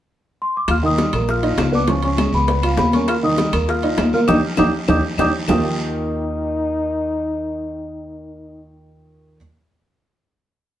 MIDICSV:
0, 0, Header, 1, 6, 480
1, 0, Start_track
1, 0, Key_signature, -3, "major"
1, 0, Tempo, 300752
1, 1092, Time_signature, 4, 2, 24, 8
1, 17237, End_track
2, 0, Start_track
2, 0, Title_t, "Celesta"
2, 0, Program_c, 0, 8
2, 666, Note_on_c, 0, 84, 90
2, 885, Note_off_c, 0, 84, 0
2, 909, Note_on_c, 0, 86, 89
2, 1126, Note_off_c, 0, 86, 0
2, 1139, Note_on_c, 0, 89, 102
2, 1236, Note_off_c, 0, 89, 0
2, 1370, Note_on_c, 0, 87, 90
2, 1799, Note_off_c, 0, 87, 0
2, 2082, Note_on_c, 0, 89, 92
2, 2737, Note_off_c, 0, 89, 0
2, 2793, Note_on_c, 0, 86, 88
2, 2896, Note_off_c, 0, 86, 0
2, 3026, Note_on_c, 0, 85, 92
2, 3254, Note_off_c, 0, 85, 0
2, 3273, Note_on_c, 0, 85, 83
2, 3742, Note_on_c, 0, 83, 88
2, 3755, Note_off_c, 0, 85, 0
2, 4405, Note_off_c, 0, 83, 0
2, 4449, Note_on_c, 0, 83, 90
2, 4672, Note_off_c, 0, 83, 0
2, 4692, Note_on_c, 0, 85, 85
2, 4930, Note_on_c, 0, 89, 93
2, 4937, Note_off_c, 0, 85, 0
2, 5038, Note_off_c, 0, 89, 0
2, 5174, Note_on_c, 0, 87, 91
2, 5617, Note_off_c, 0, 87, 0
2, 5903, Note_on_c, 0, 89, 88
2, 6589, Note_off_c, 0, 89, 0
2, 6608, Note_on_c, 0, 89, 83
2, 6715, Note_off_c, 0, 89, 0
2, 6827, Note_on_c, 0, 87, 98
2, 6829, Note_on_c, 0, 86, 92
2, 6839, Note_on_c, 0, 91, 92
2, 6988, Note_off_c, 0, 87, 0
2, 6989, Note_off_c, 0, 86, 0
2, 6995, Note_off_c, 0, 91, 0
2, 7311, Note_on_c, 0, 87, 82
2, 7323, Note_on_c, 0, 86, 90
2, 7323, Note_on_c, 0, 91, 81
2, 7470, Note_off_c, 0, 87, 0
2, 7477, Note_off_c, 0, 86, 0
2, 7477, Note_off_c, 0, 91, 0
2, 7809, Note_on_c, 0, 86, 83
2, 7811, Note_on_c, 0, 87, 84
2, 7811, Note_on_c, 0, 91, 85
2, 7960, Note_off_c, 0, 86, 0
2, 7962, Note_off_c, 0, 87, 0
2, 7962, Note_off_c, 0, 91, 0
2, 8295, Note_on_c, 0, 91, 88
2, 8299, Note_on_c, 0, 86, 90
2, 8305, Note_on_c, 0, 87, 84
2, 8444, Note_off_c, 0, 91, 0
2, 8446, Note_off_c, 0, 86, 0
2, 8450, Note_off_c, 0, 87, 0
2, 8772, Note_on_c, 0, 87, 72
2, 14941, Note_off_c, 0, 87, 0
2, 17237, End_track
3, 0, Start_track
3, 0, Title_t, "Grand piano"
3, 0, Program_c, 1, 0
3, 1324, Note_on_c, 1, 51, 73
3, 1324, Note_on_c, 1, 63, 67
3, 1524, Note_off_c, 1, 51, 0
3, 1524, Note_off_c, 1, 63, 0
3, 1563, Note_on_c, 1, 55, 58
3, 1567, Note_on_c, 1, 67, 58
3, 1763, Note_off_c, 1, 55, 0
3, 1765, Note_off_c, 1, 67, 0
3, 1808, Note_on_c, 1, 58, 61
3, 1819, Note_on_c, 1, 70, 67
3, 2203, Note_off_c, 1, 58, 0
3, 2209, Note_off_c, 1, 70, 0
3, 2280, Note_on_c, 1, 63, 76
3, 2292, Note_on_c, 1, 75, 68
3, 2678, Note_off_c, 1, 63, 0
3, 2685, Note_off_c, 1, 75, 0
3, 2751, Note_on_c, 1, 59, 66
3, 2751, Note_on_c, 1, 71, 66
3, 2956, Note_off_c, 1, 59, 0
3, 2956, Note_off_c, 1, 71, 0
3, 2994, Note_on_c, 1, 65, 69
3, 2996, Note_on_c, 1, 53, 70
3, 3394, Note_off_c, 1, 65, 0
3, 3396, Note_off_c, 1, 53, 0
3, 3479, Note_on_c, 1, 56, 55
3, 3492, Note_on_c, 1, 68, 58
3, 3877, Note_off_c, 1, 56, 0
3, 3885, Note_off_c, 1, 68, 0
3, 3961, Note_on_c, 1, 59, 64
3, 3963, Note_on_c, 1, 71, 57
3, 4161, Note_off_c, 1, 59, 0
3, 4162, Note_off_c, 1, 71, 0
3, 4202, Note_on_c, 1, 65, 71
3, 4218, Note_on_c, 1, 77, 73
3, 4598, Note_off_c, 1, 65, 0
3, 4608, Note_off_c, 1, 77, 0
3, 4681, Note_on_c, 1, 58, 71
3, 4689, Note_on_c, 1, 70, 69
3, 5077, Note_off_c, 1, 58, 0
3, 5082, Note_off_c, 1, 70, 0
3, 5156, Note_on_c, 1, 63, 75
3, 5157, Note_on_c, 1, 51, 73
3, 5357, Note_off_c, 1, 63, 0
3, 5358, Note_off_c, 1, 51, 0
3, 5410, Note_on_c, 1, 55, 57
3, 5421, Note_on_c, 1, 67, 57
3, 5605, Note_off_c, 1, 55, 0
3, 5612, Note_off_c, 1, 67, 0
3, 5643, Note_on_c, 1, 70, 61
3, 5644, Note_on_c, 1, 58, 65
3, 6037, Note_off_c, 1, 70, 0
3, 6038, Note_off_c, 1, 58, 0
3, 6124, Note_on_c, 1, 75, 75
3, 6127, Note_on_c, 1, 63, 74
3, 6518, Note_off_c, 1, 75, 0
3, 6519, Note_off_c, 1, 63, 0
3, 6601, Note_on_c, 1, 58, 66
3, 6603, Note_on_c, 1, 70, 64
3, 6799, Note_off_c, 1, 58, 0
3, 6801, Note_off_c, 1, 70, 0
3, 6841, Note_on_c, 1, 67, 90
3, 6842, Note_on_c, 1, 62, 82
3, 6846, Note_on_c, 1, 63, 93
3, 6996, Note_off_c, 1, 67, 0
3, 6997, Note_off_c, 1, 62, 0
3, 6999, Note_off_c, 1, 63, 0
3, 7321, Note_on_c, 1, 67, 81
3, 7327, Note_on_c, 1, 63, 80
3, 7330, Note_on_c, 1, 62, 72
3, 7476, Note_off_c, 1, 67, 0
3, 7479, Note_off_c, 1, 63, 0
3, 7481, Note_off_c, 1, 62, 0
3, 7811, Note_on_c, 1, 63, 80
3, 7811, Note_on_c, 1, 67, 83
3, 7814, Note_on_c, 1, 62, 84
3, 7961, Note_off_c, 1, 63, 0
3, 7962, Note_off_c, 1, 67, 0
3, 7963, Note_off_c, 1, 62, 0
3, 8282, Note_on_c, 1, 62, 84
3, 8290, Note_on_c, 1, 67, 91
3, 8291, Note_on_c, 1, 63, 86
3, 8436, Note_off_c, 1, 62, 0
3, 8441, Note_off_c, 1, 67, 0
3, 8442, Note_off_c, 1, 63, 0
3, 8744, Note_on_c, 1, 51, 82
3, 8758, Note_on_c, 1, 58, 67
3, 8759, Note_on_c, 1, 63, 69
3, 8766, Note_on_c, 1, 65, 75
3, 8774, Note_on_c, 1, 67, 90
3, 14927, Note_off_c, 1, 51, 0
3, 14933, Note_off_c, 1, 58, 0
3, 14934, Note_off_c, 1, 63, 0
3, 14937, Note_off_c, 1, 65, 0
3, 14941, Note_off_c, 1, 67, 0
3, 17237, End_track
4, 0, Start_track
4, 0, Title_t, "Trombone"
4, 0, Program_c, 2, 57
4, 1112, Note_on_c, 2, 65, 83
4, 1215, Note_off_c, 2, 65, 0
4, 1342, Note_on_c, 2, 63, 76
4, 1783, Note_off_c, 2, 63, 0
4, 2071, Note_on_c, 2, 65, 80
4, 2731, Note_off_c, 2, 65, 0
4, 2775, Note_on_c, 2, 62, 73
4, 2882, Note_off_c, 2, 62, 0
4, 3028, Note_on_c, 2, 61, 71
4, 3243, Note_off_c, 2, 61, 0
4, 3259, Note_on_c, 2, 61, 67
4, 3701, Note_off_c, 2, 61, 0
4, 3748, Note_on_c, 2, 59, 77
4, 4408, Note_off_c, 2, 59, 0
4, 4453, Note_on_c, 2, 59, 68
4, 4674, Note_off_c, 2, 59, 0
4, 4694, Note_on_c, 2, 61, 79
4, 4914, Note_off_c, 2, 61, 0
4, 4941, Note_on_c, 2, 65, 81
4, 5046, Note_off_c, 2, 65, 0
4, 5184, Note_on_c, 2, 63, 81
4, 5622, Note_off_c, 2, 63, 0
4, 5882, Note_on_c, 2, 65, 75
4, 6553, Note_off_c, 2, 65, 0
4, 6616, Note_on_c, 2, 65, 80
4, 6722, Note_off_c, 2, 65, 0
4, 6843, Note_on_c, 2, 63, 85
4, 6959, Note_off_c, 2, 63, 0
4, 7316, Note_on_c, 2, 63, 83
4, 7433, Note_off_c, 2, 63, 0
4, 7796, Note_on_c, 2, 63, 78
4, 7913, Note_off_c, 2, 63, 0
4, 8272, Note_on_c, 2, 63, 82
4, 8390, Note_off_c, 2, 63, 0
4, 8762, Note_on_c, 2, 63, 79
4, 13818, Note_off_c, 2, 63, 0
4, 17237, End_track
5, 0, Start_track
5, 0, Title_t, "Upright bass"
5, 0, Program_c, 3, 32
5, 1085, Note_on_c, 3, 39, 80
5, 1758, Note_off_c, 3, 39, 0
5, 1804, Note_on_c, 3, 34, 86
5, 2477, Note_off_c, 3, 34, 0
5, 2513, Note_on_c, 3, 37, 75
5, 3633, Note_off_c, 3, 37, 0
5, 3713, Note_on_c, 3, 37, 82
5, 4390, Note_off_c, 3, 37, 0
5, 4437, Note_on_c, 3, 39, 81
5, 5553, Note_off_c, 3, 39, 0
5, 5634, Note_on_c, 3, 39, 81
5, 6308, Note_off_c, 3, 39, 0
5, 6353, Note_on_c, 3, 39, 77
5, 6805, Note_off_c, 3, 39, 0
5, 6842, Note_on_c, 3, 39, 91
5, 7022, Note_off_c, 3, 39, 0
5, 7317, Note_on_c, 3, 39, 81
5, 7499, Note_off_c, 3, 39, 0
5, 7800, Note_on_c, 3, 39, 89
5, 7980, Note_off_c, 3, 39, 0
5, 8269, Note_on_c, 3, 39, 85
5, 8454, Note_off_c, 3, 39, 0
5, 8756, Note_on_c, 3, 39, 92
5, 14932, Note_off_c, 3, 39, 0
5, 17237, End_track
6, 0, Start_track
6, 0, Title_t, "Drums"
6, 1084, Note_on_c, 9, 75, 65
6, 1085, Note_on_c, 9, 60, 67
6, 1092, Note_on_c, 9, 63, 33
6, 1092, Note_on_c, 9, 65, 85
6, 1095, Note_on_c, 9, 74, 67
6, 1243, Note_off_c, 9, 75, 0
6, 1245, Note_off_c, 9, 60, 0
6, 1251, Note_off_c, 9, 63, 0
6, 1252, Note_off_c, 9, 65, 0
6, 1255, Note_off_c, 9, 74, 0
6, 1335, Note_on_c, 9, 63, 34
6, 1495, Note_off_c, 9, 63, 0
6, 1565, Note_on_c, 9, 73, 68
6, 1569, Note_on_c, 9, 65, 70
6, 1569, Note_on_c, 9, 66, 55
6, 1570, Note_on_c, 9, 63, 88
6, 1571, Note_on_c, 9, 60, 57
6, 1724, Note_off_c, 9, 73, 0
6, 1729, Note_off_c, 9, 65, 0
6, 1729, Note_off_c, 9, 66, 0
6, 1730, Note_off_c, 9, 63, 0
6, 1731, Note_off_c, 9, 60, 0
6, 1796, Note_on_c, 9, 73, 55
6, 1803, Note_on_c, 9, 65, 84
6, 1809, Note_on_c, 9, 75, 59
6, 1813, Note_on_c, 9, 63, 34
6, 1956, Note_off_c, 9, 73, 0
6, 1962, Note_off_c, 9, 65, 0
6, 1969, Note_off_c, 9, 75, 0
6, 1973, Note_off_c, 9, 63, 0
6, 2039, Note_on_c, 9, 74, 65
6, 2043, Note_on_c, 9, 63, 35
6, 2055, Note_on_c, 9, 60, 62
6, 2199, Note_off_c, 9, 74, 0
6, 2202, Note_off_c, 9, 63, 0
6, 2214, Note_off_c, 9, 60, 0
6, 2284, Note_on_c, 9, 65, 61
6, 2286, Note_on_c, 9, 63, 29
6, 2443, Note_off_c, 9, 65, 0
6, 2445, Note_off_c, 9, 63, 0
6, 2516, Note_on_c, 9, 65, 76
6, 2516, Note_on_c, 9, 66, 71
6, 2518, Note_on_c, 9, 73, 62
6, 2525, Note_on_c, 9, 60, 67
6, 2525, Note_on_c, 9, 61, 69
6, 2527, Note_on_c, 9, 63, 74
6, 2529, Note_on_c, 9, 75, 57
6, 2676, Note_off_c, 9, 65, 0
6, 2676, Note_off_c, 9, 66, 0
6, 2678, Note_off_c, 9, 73, 0
6, 2685, Note_off_c, 9, 60, 0
6, 2685, Note_off_c, 9, 61, 0
6, 2687, Note_off_c, 9, 63, 0
6, 2688, Note_off_c, 9, 75, 0
6, 2762, Note_on_c, 9, 63, 63
6, 2767, Note_on_c, 9, 73, 67
6, 2922, Note_off_c, 9, 63, 0
6, 2926, Note_off_c, 9, 73, 0
6, 2992, Note_on_c, 9, 65, 66
6, 2994, Note_on_c, 9, 74, 68
6, 2997, Note_on_c, 9, 60, 60
6, 3009, Note_on_c, 9, 63, 31
6, 3152, Note_off_c, 9, 65, 0
6, 3153, Note_off_c, 9, 74, 0
6, 3156, Note_off_c, 9, 60, 0
6, 3169, Note_off_c, 9, 63, 0
6, 3232, Note_on_c, 9, 65, 64
6, 3237, Note_on_c, 9, 63, 34
6, 3245, Note_on_c, 9, 60, 31
6, 3392, Note_off_c, 9, 65, 0
6, 3397, Note_off_c, 9, 63, 0
6, 3404, Note_off_c, 9, 60, 0
6, 3478, Note_on_c, 9, 73, 57
6, 3479, Note_on_c, 9, 75, 65
6, 3482, Note_on_c, 9, 63, 85
6, 3483, Note_on_c, 9, 65, 86
6, 3483, Note_on_c, 9, 66, 58
6, 3485, Note_on_c, 9, 60, 49
6, 3637, Note_off_c, 9, 73, 0
6, 3638, Note_off_c, 9, 75, 0
6, 3641, Note_off_c, 9, 63, 0
6, 3643, Note_off_c, 9, 65, 0
6, 3643, Note_off_c, 9, 66, 0
6, 3644, Note_off_c, 9, 60, 0
6, 3712, Note_on_c, 9, 73, 65
6, 3722, Note_on_c, 9, 63, 32
6, 3732, Note_on_c, 9, 60, 30
6, 3872, Note_off_c, 9, 73, 0
6, 3881, Note_off_c, 9, 63, 0
6, 3891, Note_off_c, 9, 60, 0
6, 3946, Note_on_c, 9, 74, 67
6, 3959, Note_on_c, 9, 60, 65
6, 3961, Note_on_c, 9, 65, 61
6, 3967, Note_on_c, 9, 63, 36
6, 4106, Note_off_c, 9, 74, 0
6, 4118, Note_off_c, 9, 60, 0
6, 4120, Note_off_c, 9, 65, 0
6, 4126, Note_off_c, 9, 63, 0
6, 4194, Note_on_c, 9, 63, 30
6, 4194, Note_on_c, 9, 75, 64
6, 4203, Note_on_c, 9, 65, 89
6, 4353, Note_off_c, 9, 63, 0
6, 4354, Note_off_c, 9, 75, 0
6, 4362, Note_off_c, 9, 65, 0
6, 4428, Note_on_c, 9, 60, 63
6, 4428, Note_on_c, 9, 61, 72
6, 4429, Note_on_c, 9, 66, 72
6, 4433, Note_on_c, 9, 63, 73
6, 4439, Note_on_c, 9, 73, 60
6, 4588, Note_off_c, 9, 60, 0
6, 4588, Note_off_c, 9, 61, 0
6, 4588, Note_off_c, 9, 66, 0
6, 4592, Note_off_c, 9, 63, 0
6, 4599, Note_off_c, 9, 73, 0
6, 4668, Note_on_c, 9, 60, 30
6, 4679, Note_on_c, 9, 73, 60
6, 4681, Note_on_c, 9, 63, 75
6, 4681, Note_on_c, 9, 65, 70
6, 4828, Note_off_c, 9, 60, 0
6, 4838, Note_off_c, 9, 73, 0
6, 4840, Note_off_c, 9, 63, 0
6, 4841, Note_off_c, 9, 65, 0
6, 4914, Note_on_c, 9, 75, 61
6, 4915, Note_on_c, 9, 60, 69
6, 4919, Note_on_c, 9, 63, 33
6, 4919, Note_on_c, 9, 74, 72
6, 4922, Note_on_c, 9, 65, 82
6, 5074, Note_off_c, 9, 60, 0
6, 5074, Note_off_c, 9, 75, 0
6, 5079, Note_off_c, 9, 63, 0
6, 5079, Note_off_c, 9, 74, 0
6, 5082, Note_off_c, 9, 65, 0
6, 5177, Note_on_c, 9, 63, 36
6, 5336, Note_off_c, 9, 63, 0
6, 5393, Note_on_c, 9, 60, 59
6, 5394, Note_on_c, 9, 73, 64
6, 5399, Note_on_c, 9, 65, 65
6, 5399, Note_on_c, 9, 66, 57
6, 5417, Note_on_c, 9, 63, 84
6, 5552, Note_off_c, 9, 60, 0
6, 5554, Note_off_c, 9, 73, 0
6, 5559, Note_off_c, 9, 65, 0
6, 5559, Note_off_c, 9, 66, 0
6, 5576, Note_off_c, 9, 63, 0
6, 5629, Note_on_c, 9, 73, 62
6, 5631, Note_on_c, 9, 75, 68
6, 5635, Note_on_c, 9, 65, 97
6, 5660, Note_on_c, 9, 63, 33
6, 5788, Note_off_c, 9, 73, 0
6, 5791, Note_off_c, 9, 75, 0
6, 5794, Note_off_c, 9, 65, 0
6, 5819, Note_off_c, 9, 63, 0
6, 5866, Note_on_c, 9, 74, 64
6, 5886, Note_on_c, 9, 60, 67
6, 5894, Note_on_c, 9, 63, 33
6, 6026, Note_off_c, 9, 74, 0
6, 6046, Note_off_c, 9, 60, 0
6, 6054, Note_off_c, 9, 63, 0
6, 6114, Note_on_c, 9, 65, 59
6, 6140, Note_on_c, 9, 63, 30
6, 6273, Note_off_c, 9, 65, 0
6, 6300, Note_off_c, 9, 63, 0
6, 6347, Note_on_c, 9, 60, 66
6, 6347, Note_on_c, 9, 61, 79
6, 6349, Note_on_c, 9, 73, 63
6, 6352, Note_on_c, 9, 65, 73
6, 6352, Note_on_c, 9, 66, 74
6, 6355, Note_on_c, 9, 75, 60
6, 6370, Note_on_c, 9, 63, 77
6, 6507, Note_off_c, 9, 60, 0
6, 6507, Note_off_c, 9, 61, 0
6, 6509, Note_off_c, 9, 73, 0
6, 6511, Note_off_c, 9, 65, 0
6, 6511, Note_off_c, 9, 66, 0
6, 6514, Note_off_c, 9, 75, 0
6, 6530, Note_off_c, 9, 63, 0
6, 6592, Note_on_c, 9, 73, 62
6, 6597, Note_on_c, 9, 63, 66
6, 6751, Note_off_c, 9, 73, 0
6, 6757, Note_off_c, 9, 63, 0
6, 6826, Note_on_c, 9, 65, 92
6, 6827, Note_on_c, 9, 75, 93
6, 6833, Note_on_c, 9, 74, 95
6, 6840, Note_on_c, 9, 61, 92
6, 6843, Note_on_c, 9, 64, 91
6, 6986, Note_off_c, 9, 65, 0
6, 6986, Note_off_c, 9, 75, 0
6, 6993, Note_off_c, 9, 74, 0
6, 6999, Note_off_c, 9, 61, 0
6, 7002, Note_off_c, 9, 64, 0
6, 7296, Note_on_c, 9, 61, 83
6, 7299, Note_on_c, 9, 75, 91
6, 7314, Note_on_c, 9, 65, 96
6, 7319, Note_on_c, 9, 64, 87
6, 7321, Note_on_c, 9, 74, 88
6, 7456, Note_off_c, 9, 61, 0
6, 7459, Note_off_c, 9, 75, 0
6, 7473, Note_off_c, 9, 65, 0
6, 7478, Note_off_c, 9, 64, 0
6, 7480, Note_off_c, 9, 74, 0
6, 7787, Note_on_c, 9, 75, 83
6, 7789, Note_on_c, 9, 74, 80
6, 7792, Note_on_c, 9, 65, 85
6, 7797, Note_on_c, 9, 61, 97
6, 7799, Note_on_c, 9, 64, 97
6, 7946, Note_off_c, 9, 75, 0
6, 7948, Note_off_c, 9, 74, 0
6, 7952, Note_off_c, 9, 65, 0
6, 7956, Note_off_c, 9, 61, 0
6, 7959, Note_off_c, 9, 64, 0
6, 8268, Note_on_c, 9, 75, 94
6, 8272, Note_on_c, 9, 74, 86
6, 8277, Note_on_c, 9, 64, 82
6, 8283, Note_on_c, 9, 65, 83
6, 8285, Note_on_c, 9, 61, 92
6, 8427, Note_off_c, 9, 75, 0
6, 8432, Note_off_c, 9, 74, 0
6, 8436, Note_off_c, 9, 64, 0
6, 8443, Note_off_c, 9, 65, 0
6, 8445, Note_off_c, 9, 61, 0
6, 8740, Note_on_c, 9, 75, 86
6, 8752, Note_on_c, 9, 64, 92
6, 8756, Note_on_c, 9, 61, 91
6, 8759, Note_on_c, 9, 74, 98
6, 8767, Note_on_c, 9, 66, 94
6, 8899, Note_off_c, 9, 75, 0
6, 8911, Note_off_c, 9, 64, 0
6, 8916, Note_off_c, 9, 61, 0
6, 8919, Note_off_c, 9, 74, 0
6, 8927, Note_off_c, 9, 66, 0
6, 17237, End_track
0, 0, End_of_file